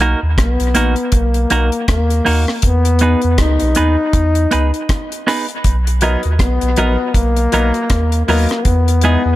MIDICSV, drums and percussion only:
0, 0, Header, 1, 2, 480
1, 0, Start_track
1, 0, Key_signature, 5, "major"
1, 0, Tempo, 751880
1, 1684, Time_signature, 4, 2, 24, 8
1, 5974, End_track
2, 0, Start_track
2, 0, Title_t, "Drums"
2, 241, Note_on_c, 9, 36, 109
2, 243, Note_on_c, 9, 42, 84
2, 245, Note_on_c, 9, 37, 120
2, 305, Note_off_c, 9, 36, 0
2, 306, Note_off_c, 9, 42, 0
2, 309, Note_off_c, 9, 37, 0
2, 382, Note_on_c, 9, 42, 50
2, 446, Note_off_c, 9, 42, 0
2, 477, Note_on_c, 9, 42, 66
2, 541, Note_off_c, 9, 42, 0
2, 612, Note_on_c, 9, 42, 34
2, 676, Note_off_c, 9, 42, 0
2, 714, Note_on_c, 9, 42, 91
2, 718, Note_on_c, 9, 36, 112
2, 778, Note_off_c, 9, 42, 0
2, 782, Note_off_c, 9, 36, 0
2, 857, Note_on_c, 9, 42, 47
2, 921, Note_off_c, 9, 42, 0
2, 959, Note_on_c, 9, 42, 77
2, 1023, Note_off_c, 9, 42, 0
2, 1099, Note_on_c, 9, 42, 33
2, 1163, Note_off_c, 9, 42, 0
2, 1200, Note_on_c, 9, 42, 90
2, 1202, Note_on_c, 9, 36, 110
2, 1204, Note_on_c, 9, 37, 114
2, 1264, Note_off_c, 9, 42, 0
2, 1265, Note_off_c, 9, 36, 0
2, 1268, Note_off_c, 9, 37, 0
2, 1343, Note_on_c, 9, 42, 51
2, 1407, Note_off_c, 9, 42, 0
2, 1443, Note_on_c, 9, 46, 68
2, 1507, Note_off_c, 9, 46, 0
2, 1585, Note_on_c, 9, 37, 69
2, 1649, Note_off_c, 9, 37, 0
2, 1674, Note_on_c, 9, 42, 94
2, 1680, Note_on_c, 9, 36, 95
2, 1738, Note_off_c, 9, 42, 0
2, 1744, Note_off_c, 9, 36, 0
2, 1819, Note_on_c, 9, 42, 55
2, 1883, Note_off_c, 9, 42, 0
2, 1908, Note_on_c, 9, 42, 76
2, 1972, Note_off_c, 9, 42, 0
2, 2053, Note_on_c, 9, 42, 35
2, 2116, Note_off_c, 9, 42, 0
2, 2158, Note_on_c, 9, 42, 88
2, 2159, Note_on_c, 9, 36, 108
2, 2160, Note_on_c, 9, 37, 111
2, 2221, Note_off_c, 9, 42, 0
2, 2223, Note_off_c, 9, 36, 0
2, 2224, Note_off_c, 9, 37, 0
2, 2295, Note_on_c, 9, 42, 50
2, 2359, Note_off_c, 9, 42, 0
2, 2393, Note_on_c, 9, 42, 69
2, 2457, Note_off_c, 9, 42, 0
2, 2639, Note_on_c, 9, 36, 113
2, 2639, Note_on_c, 9, 42, 88
2, 2703, Note_off_c, 9, 36, 0
2, 2703, Note_off_c, 9, 42, 0
2, 2778, Note_on_c, 9, 42, 52
2, 2842, Note_off_c, 9, 42, 0
2, 2882, Note_on_c, 9, 42, 74
2, 2946, Note_off_c, 9, 42, 0
2, 3025, Note_on_c, 9, 42, 32
2, 3089, Note_off_c, 9, 42, 0
2, 3123, Note_on_c, 9, 36, 116
2, 3123, Note_on_c, 9, 42, 83
2, 3126, Note_on_c, 9, 37, 105
2, 3187, Note_off_c, 9, 36, 0
2, 3187, Note_off_c, 9, 42, 0
2, 3190, Note_off_c, 9, 37, 0
2, 3268, Note_on_c, 9, 42, 51
2, 3332, Note_off_c, 9, 42, 0
2, 3370, Note_on_c, 9, 46, 67
2, 3371, Note_on_c, 9, 37, 66
2, 3434, Note_off_c, 9, 46, 0
2, 3435, Note_off_c, 9, 37, 0
2, 3501, Note_on_c, 9, 42, 34
2, 3565, Note_off_c, 9, 42, 0
2, 3603, Note_on_c, 9, 42, 91
2, 3604, Note_on_c, 9, 36, 96
2, 3667, Note_off_c, 9, 42, 0
2, 3668, Note_off_c, 9, 36, 0
2, 3748, Note_on_c, 9, 42, 53
2, 3812, Note_off_c, 9, 42, 0
2, 3836, Note_on_c, 9, 42, 75
2, 3900, Note_off_c, 9, 42, 0
2, 3977, Note_on_c, 9, 42, 34
2, 4041, Note_off_c, 9, 42, 0
2, 4081, Note_on_c, 9, 36, 115
2, 4082, Note_on_c, 9, 42, 89
2, 4084, Note_on_c, 9, 37, 109
2, 4145, Note_off_c, 9, 36, 0
2, 4146, Note_off_c, 9, 42, 0
2, 4148, Note_off_c, 9, 37, 0
2, 4222, Note_on_c, 9, 42, 50
2, 4286, Note_off_c, 9, 42, 0
2, 4318, Note_on_c, 9, 42, 66
2, 4382, Note_off_c, 9, 42, 0
2, 4561, Note_on_c, 9, 36, 109
2, 4562, Note_on_c, 9, 42, 93
2, 4625, Note_off_c, 9, 36, 0
2, 4626, Note_off_c, 9, 42, 0
2, 4702, Note_on_c, 9, 42, 51
2, 4766, Note_off_c, 9, 42, 0
2, 4802, Note_on_c, 9, 42, 73
2, 4866, Note_off_c, 9, 42, 0
2, 4942, Note_on_c, 9, 42, 33
2, 5006, Note_off_c, 9, 42, 0
2, 5041, Note_on_c, 9, 42, 85
2, 5044, Note_on_c, 9, 36, 114
2, 5045, Note_on_c, 9, 37, 109
2, 5105, Note_off_c, 9, 42, 0
2, 5108, Note_off_c, 9, 36, 0
2, 5109, Note_off_c, 9, 37, 0
2, 5184, Note_on_c, 9, 42, 54
2, 5248, Note_off_c, 9, 42, 0
2, 5288, Note_on_c, 9, 46, 73
2, 5352, Note_off_c, 9, 46, 0
2, 5418, Note_on_c, 9, 42, 33
2, 5433, Note_on_c, 9, 37, 67
2, 5482, Note_off_c, 9, 42, 0
2, 5497, Note_off_c, 9, 37, 0
2, 5522, Note_on_c, 9, 42, 90
2, 5524, Note_on_c, 9, 36, 99
2, 5586, Note_off_c, 9, 42, 0
2, 5588, Note_off_c, 9, 36, 0
2, 5669, Note_on_c, 9, 42, 58
2, 5733, Note_off_c, 9, 42, 0
2, 5755, Note_on_c, 9, 42, 77
2, 5819, Note_off_c, 9, 42, 0
2, 5974, End_track
0, 0, End_of_file